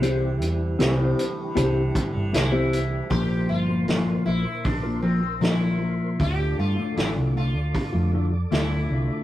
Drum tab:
HH |xxxxxxxx|o-o-o-o-|o-o-o-o-|
SD |--o---o-|--o---o-|--o---o-|
BD |----oo--|o---o---|o---o---|